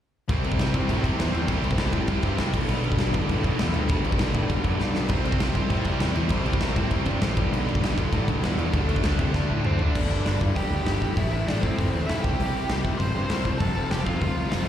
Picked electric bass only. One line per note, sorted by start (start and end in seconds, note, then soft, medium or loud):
0.29 0.57 C2 loud
0.59 0.73 C2 medium
0.74 0.88 C2 loud
0.89 1.03 A2 medium
1.04 1.18 C2 medium
1.19 1.33 E2 loud
1.34 1.48 E2 medium
1.49 1.62 C2 medium
1.63 1.77 C2 medium
1.77 1.92 C2 medium
1.93 2.07 A2 loud
2.08 2.23 C2 medium
2.23 2.38 G2 medium
2.39 2.53 C2 loud
2.54 2.67 B1 medium
2.68 2.96 B1 medium
2.98 3.12 B1 loud
3.14 3.28 B1 medium
3.29 3.43 A2 medium
3.44 3.58 B1 medium
3.60 3.74 E2 loud
3.75 3.89 D2 medium
3.90 4.04 B1 loud
4.06 4.19 B1 medium
4.21 4.34 B1 medium
4.34 4.48 A2 medium
4.50 4.64 B1 medium
4.65 4.79 F#2 medium
4.81 4.94 B1 medium
4.95 5.09 B1 medium
5.10 5.38 C2 loud
5.40 5.54 C2 medium
5.55 5.69 C2 medium
5.70 5.84 A2 medium
5.85 5.99 C2 medium
6.00 6.14 E2 medium
6.15 6.29 E2 medium
6.31 6.45 C2 loud
6.45 6.59 C2 medium
6.61 6.75 C2 medium
6.76 6.90 A2 medium
6.91 7.05 C2 medium
7.06 7.20 G2 medium
7.21 7.36 A1 medium
7.37 7.51 B1 medium
7.52 7.80 B1 loud
7.81 7.96 B1 loud
7.98 8.12 B1 loud
8.13 8.27 A2 medium
8.28 8.42 B1 medium
8.42 8.57 E2 loud
8.57 8.72 E2 medium
8.73 8.87 D2 loud
8.88 9.02 D2 medium
9.04 9.18 D2 medium
9.19 9.33 C3 loud
9.34 9.48 D2 medium
9.50 9.64 A2 medium
9.65 9.79 D2 loud
9.80 9.94 D2 medium
9.96 10.05 G1 medium
10.10 10.20 G1 medium
10.26 10.36 G1 medium
10.41 10.51 G2 medium
10.56 10.66 F1 medium
10.71 10.81 D2 medium
10.86 10.96 G1 medium
11.02 11.12 G#1 medium
11.17 11.27 A1 medium
11.33 11.42 A1 medium
11.48 11.57 A1 medium
11.63 11.73 A2 medium
11.79 11.88 G1 medium
11.94 12.03 E2 medium
12.09 12.19 B1 loud
12.24 12.34 C2 medium
12.40 12.49 C2 medium
12.55 12.65 C2 medium
12.70 12.80 C2 medium
12.84 12.94 C3 medium
13.00 13.10 A1 medium
13.15 13.25 G2 medium
13.31 13.40 C2 medium
13.45 13.55 C2 medium
13.60 13.70 F1 medium
13.78 13.87 F1 medium
13.92 14.02 F1 medium
14.07 14.17 F2 medium
14.21 14.31 D2 medium
14.39 14.48 C2 medium
14.53 14.63 F1 medium